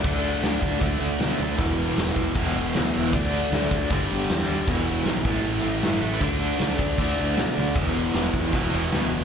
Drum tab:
CC |x-x-x-x-x-x-x-x-|x-x-x-x-x-x-x-x-|x-x-x-x-x-x-x-x-|x-x-x-x-x-x-x-x-|
SD |----o-------o--o|----o-------o--o|----o-------o---|----o-----o-o--o|
BD |o-----o-o-------|o-----o-o-------|o-----o-o-------|o-----o---------|

CC |x-x-x-x-x-x-x-x-|x-x-x-x-x-x-x-x-|
SD |----o-----o-o---|----o-----o-o---|
BD |o-----o-o-------|o-----o-o-------|